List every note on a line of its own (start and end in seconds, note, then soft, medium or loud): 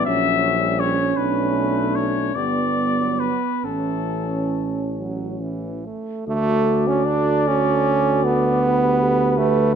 0.05 1.15 A#1 medium
0.05 0.62 F#3 medium
0.05 2.35 C#4 medium
0.05 1.17 C#4 medium
0.05 0.81 E5 loud
0.61 1.00 G3 medium
0.80 1.18 C#5 medium
1.16 2.33 B1 medium
1.16 2.33 A3 medium
1.16 2.36 D4 medium
1.16 1.97 B4 medium
1.96 2.37 C#5 medium
2.35 3.30 G1 medium
2.35 2.99 G3 medium
2.35 3.32 B3 medium
2.35 3.61 B3 medium
2.35 3.21 D5 medium
2.97 3.40 F#3 soft
3.20 3.66 B4 medium
3.63 5.89 A1 soft
3.63 4.84 E3 soft
3.63 5.89 C#4 soft
3.63 5.64 C#4 medium
3.63 4.97 A4 medium
4.97 5.43 F#3 medium
5.41 5.87 E3 soft
5.85 6.27 A3 medium
6.27 9.76 D2 medium
6.27 6.89 A3 loud
6.27 7.45 F#4 medium
6.27 8.61 A4 medium
6.27 8.66 D5 medium
6.88 7.08 C#4 medium
7.06 7.49 D4 medium
7.48 8.26 C#4 loud
7.48 8.66 F#4 medium
8.24 9.39 B3 medium
8.64 9.76 G4 medium
8.64 9.02 G4 medium
8.64 9.75 B4 medium
9.03 9.40 A4 medium
9.38 9.75 A3 medium
9.38 9.74 B4 medium